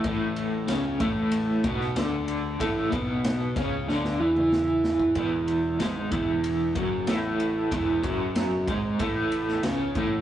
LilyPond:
<<
  \new Staff \with { instrumentName = "Overdriven electric guitar" } { \clef bass \time 4/4 \key e \mixolydian \tempo 4 = 94 <a, a>4 <cis cis'>8 <a, a>4 <b, b>8 <d d'>4 | <a, a>8 <b, b>4 <cis cis'>8 <d d'>8 <e e'>4. | <e, e>4 <gis, gis>8 <e, e>4 <fis, fis>8 <a, a>4 | <e, e>8 <fis, fis>4 <gis, gis>8 <a, a>4 <cis cis'>8 <a, a>8 | }
  \new Staff \with { instrumentName = "Picked electric bass" } { \clef bass \time 4/4 \key e \mixolydian a,,4 cis,8 a,,4 b,,8 d,4 | a,,8 b,,4 cis,8 d,8 e,4. | e,,4 gis,,8 e,,4 fis,,8 a,,4 | e,,8 fis,,4 gis,,8 a,,4 cis,8 a,,8 | }
  \new DrumStaff \with { instrumentName = "Drums" } \drummode { \time 4/4 <bd cymr>8 cymr8 <cymr sn>8 <bd cymr>8 cymr8 <bd cymr>16 sn16 <cymr sn>8 cymr8 | <bd cymr>8 <bd cymr>8 <cymr sn>8 <bd cymr sn>8 sn16 sn8 toml16 sn8 sn16 bd16 | <bd cymr>8 cymr8 <cymr sn>8 <bd cymr>8 cymr8 <bd cymr>8 <cymr sn>8 cymr8 | <bd cymr>8 <bd cymr>8 <cymr sn>8 <bd cymr>8 <bd cymr>8 cymr16 sn16 <cymr sn>8 <bd cymr>8 | }
>>